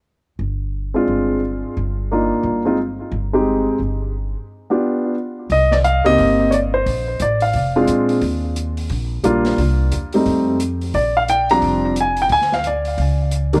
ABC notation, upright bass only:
X:1
M:4/4
L:1/8
Q:"Swing" 1/4=176
K:Cm
V:1 name="Upright bass" clef=bass
z2 G,,,3 z G,,,2- | G,,, z G,,,3 z G,,,2- | G,,, z G,,,3 z G,,,2- | G,,, z6 z |
C,,3 _D,, G,,,4 | B,,,2 =A,,,2 F,,,2 B,,2 | E,,4 B,,,2 B,,,2 | C,,2 =E,,2 F,,4 |
B,,,4 F,,,4 | D,,4 _D,,4 |]